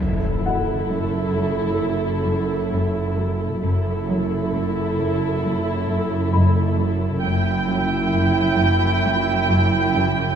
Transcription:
0.00 double bass section F#1, cello section F#2, viola section E4 A4, impact
0.45 cello section F#3, grand piano F#5
0.91 cello section F#2
1.36 cello section F#2
1.81 cello section F#2
2.27 cello section F#2
2.72 cello section F#2
3.17 cello section F#3
3.62 double bass section F#1, cello section F#2, viola section E4 A4
4.08 cello section F#3
4.54 cello section F#2
4.98 cello section F#2
5.43 cello section F#2
5.88 cello section F#2
6.33 cello section F#2, grand piano B5
6.79 cello section F#3
7.24 double bass section F#1, cello section F#2, viola section E4 G5
7.70 cello section F#3
8.14 cello section F#2
8.59 cello section F#2
9.04 cello section F#2
9.50 cello section F#2
9.95 cello section F#2

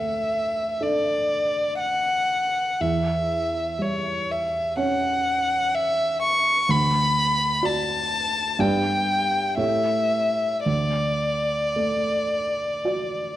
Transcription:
Already playing: grand piano D2 A3, violin E5
0.81 grand piano D4 A4, violin D5
1.80 violin F#5
2.80 grand piano E2, violin E5
3.79 grand piano G3, violin C#5
4.31 violin E5
4.77 grand piano C#4 C#5, violin F#5
5.75 violin E5
6.22 violin C#6
6.69 grand piano D2, violin B5
7.62 grand piano F#4 D5, violin A5
8.59 grand piano G2 B3 G4 D5, violin G5
9.57 grand piano A2 A3 G4 C#5, violin E5
10.66 grand piano D2, violin D5
11.76 grand piano A3
12.85 grand piano F#4 D5

